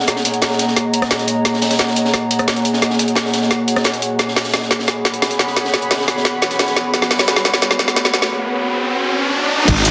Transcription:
0.00 4.15 A#3 medium
0.00 1.42 G#4 medium
0.00 4.18 G#4 medium
0.00 4.19 C#5 medium
0.00 4.15 D#5 medium
0.00 4.19 F#5 medium
0.00 4.19 A#5 medium
0.07 snare medium
0.07 closed hi-hat medium
0.16 snare medium
0.24 snare soft
0.24 closed hi-hat medium
0.34 closed hi-hat soft
0.42 snare loud
0.42 snare medium
0.42 closed hi-hat medium
0.50 snare medium
0.59 snare soft
0.59 closed hi-hat medium
0.68 snare soft
0.76 snare medium
0.76 closed hi-hat medium
0.93 closed hi-hat medium
1.02 cross-stick medium
1.02 snare soft
1.02 closed hi-hat soft
1.11 snare medium
1.11 snare loud
1.11 closed hi-hat loud
1.11 closed hi-hat medium
1.19 snare soft
1.19 closed hi-hat soft
1.27 closed hi-hat medium
1.45 4.17 F#4 medium
1.45 snare medium
1.45 closed hi-hat medium
1.54 snare soft
1.62 snare medium
1.62 closed hi-hat medium
1.62 open hi-hat medium
1.70 snare soft
1.70 closed hi-hat soft
1.79 snare loud
1.79 snare medium
1.79 closed hi-hat medium
1.88 snare soft
1.96 closed hi-hat medium
2.05 snare soft
2.14 cross-stick soft
2.14 snare medium
2.14 closed hi-hat medium
2.31 closed hi-hat medium
2.39 cross-stick medium
2.39 closed hi-hat soft
2.48 snare loud
2.48 snare medium
2.48 closed hi-hat loud
2.48 closed hi-hat medium
2.56 closed hi-hat soft
2.65 closed hi-hat medium
2.73 snare soft
2.82 snare medium
2.82 closed hi-hat medium
2.90 snare medium
2.99 snare soft
2.99 closed hi-hat medium
3.08 closed hi-hat soft
3.15 snare loud
3.15 snare medium
3.15 closed hi-hat medium
3.15 closed hi-hat loud
3.25 snare medium
3.33 snare soft
3.33 closed hi-hat medium
3.42 snare soft
3.51 snare medium
3.51 closed hi-hat medium
3.68 closed hi-hat medium
3.76 cross-stick medium
3.76 snare soft
3.76 closed hi-hat soft
3.84 snare loud
3.84 snare medium
3.84 closed hi-hat medium
3.93 snare soft
3.93 closed hi-hat soft
4.02 closed hi-hat medium
4.19 9.64 B3 medium
4.19 9.64 F#4 medium
4.19 8.31 G#4 medium
4.19 9.64 C#5 medium
4.19 snare medium
4.19 closed hi-hat medium
4.19 riser medium
4.28 snare soft
4.36 snare medium
4.36 closed hi-hat medium
4.36 open hi-hat medium
4.45 snare soft
4.45 closed hi-hat soft
4.53 8.31 C#5 medium
4.53 snare medium
4.53 snare loud
4.53 closed hi-hat medium
4.62 snare medium
4.71 8.31 B5 medium
4.71 snare medium
4.71 closed hi-hat medium
4.79 snare medium
4.86 8.31 F#5 medium
4.86 snare medium
4.86 closed hi-hat medium
5.05 snare medium
5.05 closed hi-hat medium
5.14 closed hi-hat soft
5.22 snare medium
5.22 snare loud
5.22 closed hi-hat medium
5.31 closed hi-hat soft
5.39 snare medium
5.39 closed hi-hat medium
5.47 snare soft
5.56 snare medium
5.56 closed hi-hat medium
5.65 snare medium
5.74 snare medium
5.74 snare soft
5.74 closed hi-hat medium
5.82 closed hi-hat soft
5.91 snare medium
5.91 snare loud
5.91 closed hi-hat loud
5.91 closed hi-hat medium
5.99 snare medium
6.08 snare medium
6.08 snare soft
6.08 closed hi-hat medium
6.17 snare soft
6.25 snare medium
6.25 closed hi-hat medium
6.42 snare medium
6.42 closed hi-hat medium
6.51 snare soft
6.51 closed hi-hat soft
6.59 snare loud
6.59 closed hi-hat loud
6.59 closed hi-hat medium
6.68 snare soft
6.68 closed hi-hat soft
6.76 snare medium
6.76 closed hi-hat medium
6.94 snare medium
6.94 closed hi-hat medium
7.02 snare medium
7.02 snare soft
7.10 snare medium
7.10 closed hi-hat medium
7.10 open hi-hat medium
7.19 snare soft
7.19 snare medium
7.19 closed hi-hat soft
7.28 snare loud
7.28 closed hi-hat medium
7.28 closed hi-hat loud
7.36 snare soft
7.36 snare medium
7.45 snare medium
7.45 closed hi-hat medium
7.53 snare soft
7.53 snare medium
7.62 snare loud
7.62 closed hi-hat medium
7.71 snare medium
7.79 snare loud
7.79 closed hi-hat medium
7.88 snare medium
7.88 closed hi-hat soft
7.96 snare loud
7.96 closed hi-hat medium
7.96 closed hi-hat loud
8.05 snare medium
8.05 closed hi-hat soft
8.14 snare medium
8.14 closed hi-hat medium
8.22 snare soft
8.22 snare medium
9.68 9.91 G#1 loud
9.68 9.91 A#3 medium
9.68 9.91 G#4 medium
9.68 9.91 D#5 medium
9.68 kick loud
9.68 closed hi-hat medium
9.68 crash loud
9.76 snare soft
9.76 cabasa soft
9.85 snare medium
9.85 closed hi-hat medium
9.85 open hi-hat medium
9.85 cabasa medium

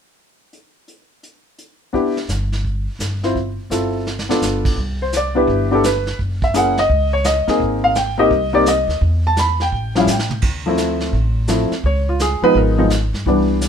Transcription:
0.53 closed hi-hat soft
0.88 closed hi-hat soft
1.23 closed hi-hat soft
1.58 closed hi-hat soft
1.93 2.14 B3 medium
1.93 2.14 D4 soft
1.93 2.15 E4 soft
1.93 2.15 G4 medium
1.93 brush sweep soft
1.93 kick soft
2.17 snare soft
2.29 2.86 G1 medium
2.29 snare soft
2.29 hi-hat pedal soft
2.52 snare soft
2.65 brush sweep soft
2.65 kick soft
2.99 3.56 G1 medium
2.99 snare soft
2.99 hi-hat pedal soft
3.23 3.34 C4 medium
3.23 3.35 E4 soft
3.23 3.35 F4 soft
3.23 3.35 C5 medium
3.23 snare soft
3.35 brush sweep soft
3.35 kick soft
3.70 4.27 G1 medium
3.70 4.06 C4 soft
3.70 4.06 E4 soft
3.70 4.07 F4 soft
3.70 4.07 A4 medium
3.70 snare soft
3.70 hi-hat pedal soft
4.07 snare soft
4.19 snare soft
4.29 4.74 B3 medium
4.29 4.75 D4 soft
4.29 4.75 F4 soft
4.29 4.75 A4 medium
4.29 snare medium
4.41 4.74 G1 medium
4.41 snare soft
4.41 hi-hat pedal soft
4.65 kick medium
4.65 crash soft
4.77 5.44 C2 medium
4.77 brush sweep soft
4.77 kick soft
5.02 5.13 C5 medium
5.13 snare soft
5.13 hi-hat pedal soft
5.17 5.37 D5 medium
5.35 5.68 B3 medium
5.35 5.69 D4 medium
5.35 5.69 E4 medium
5.35 5.69 G4 medium
5.35 5.69 B4 medium
5.47 6.15 G1 medium
5.47 brush sweep soft
5.47 kick soft
5.71 5.82 B3 medium
5.71 5.82 D4 medium
5.71 5.82 E4 soft
5.71 5.83 G4 medium
5.71 5.85 A4 medium
5.84 6.17 B4 medium
5.84 snare soft
5.84 hi-hat pedal medium
6.07 snare soft
6.19 6.86 F#1 medium
6.19 brush sweep soft
6.19 kick soft
6.42 6.55 E5 medium
6.42 kick medium
6.54 6.74 A#3 soft
6.54 6.75 C#4 soft
6.54 6.75 E4 soft
6.54 6.75 G#4 medium
6.54 6.78 F#5 medium
6.54 snare soft
6.54 hi-hat pedal soft
6.77 7.11 D#5 medium
6.77 snare soft
6.89 7.44 C#2 medium
6.89 brush sweep soft
6.89 kick soft
7.13 7.25 C#5 medium
7.24 7.58 D#5 medium
7.24 snare medium
7.24 hi-hat pedal medium
7.47 7.93 A#3 medium
7.47 7.93 C4 medium
7.47 7.93 D#4 soft
7.47 7.94 G#4 medium
7.47 muted upright bass stroke soft
7.47 snare soft
7.59 8.27 G#1 medium
7.59 brush sweep soft
7.59 kick soft
7.84 7.95 F5 medium
7.95 8.18 G5 medium
7.95 snare soft
7.95 hi-hat pedal soft
8.18 8.29 A#3 medium
8.18 8.29 C4 medium
8.18 8.30 D#4 medium
8.18 8.30 G4 medium
8.18 8.52 D#5 medium
8.31 8.85 C2 medium
8.31 brush sweep soft
8.31 kick soft
8.53 8.64 A#3 medium
8.53 8.64 C4 medium
8.53 8.65 D#4 medium
8.53 8.65 G4 medium
8.53 8.66 D5 medium
8.66 9.00 D#5 medium
8.66 snare soft
8.66 hi-hat pedal soft
8.88 9.00 D2 medium
8.88 snare soft
9.01 9.68 E2 medium
9.01 brush sweep soft
9.01 kick soft
9.27 9.38 A5 medium
9.36 9.60 B5 medium
9.36 snare soft
9.36 hi-hat pedal soft
9.60 9.94 G5 medium
9.60 snare soft
9.72 10.05 A1 medium
9.72 brush sweep soft
9.72 kick soft
9.95 10.06 F3 medium
9.95 10.07 G3 medium
9.95 10.07 C#4 medium
9.95 10.07 E4 medium
9.95 10.08 F5 medium
9.95 snare soft
10.07 10.40 A2 medium
10.07 10.42 G5 medium
10.07 snare soft
10.07 hi-hat pedal medium
10.19 snare medium
10.31 mid tom medium
10.42 11.10 D2 medium
10.42 brush sweep soft
10.42 kick medium
10.42 ride medium
10.66 11.11 F3 medium
10.66 11.11 A3 soft
10.66 11.12 C4 medium
10.66 11.12 E4 medium
10.77 snare soft
10.77 hi-hat pedal soft
11.00 snare soft
11.13 11.68 A1 medium
11.13 brush sweep soft
11.13 kick soft
11.48 11.69 F3 soft
11.48 11.70 A3 soft
11.48 11.70 C4 soft
11.48 11.70 E4 medium
11.48 snare soft
11.48 hi-hat pedal medium
11.72 snare soft
11.84 12.38 C#2 medium
11.84 12.08 C#5 medium
11.84 brush sweep soft
11.84 kick soft
12.09 12.20 F4 medium
12.19 12.43 G#4 medium
12.19 snare soft
12.19 hi-hat pedal soft
12.42 12.76 F3 medium
12.42 12.76 G#3 medium
12.42 12.76 B3 medium
12.42 12.77 D#4 medium
12.42 12.55 B4 medium
12.42 muted upright bass stroke soft
12.54 13.09 G#1 medium
12.54 12.89 A#4 medium
12.54 brush sweep soft
12.54 kick soft
12.78 12.89 F3 medium
12.78 12.89 G#3 medium
12.78 12.89 B3 soft
12.78 12.90 D#4 medium
12.90 snare soft
12.90 hi-hat pedal medium
13.13 13.25 G2 medium
13.13 snare soft
13.26 13.68 C2 medium
13.26 13.68 E3 medium
13.26 13.68 G3 soft
13.26 13.68 B3 soft
13.26 13.68 D4 medium
13.26 brush sweep soft
13.26 kick soft
13.61 snare soft
13.61 hi-hat pedal medium

